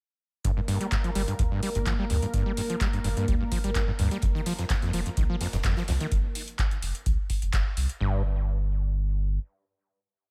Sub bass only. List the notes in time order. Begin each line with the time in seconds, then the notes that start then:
0.45 G1
1.15 G1
1.39 D2
1.75 G1
1.86 G1
2.10 D2
2.34 G1
3.04 G1
3.28 D2
3.64 G1
3.75 G1
3.99 D2
4.23 F1
4.93 F1
5.17 C2
5.53 F1
5.64 F1
5.88 C2
6.12 F1
6.82 F1
7.06 C2
7.42 F1
7.53 F1
7.77 C2
8.01 G1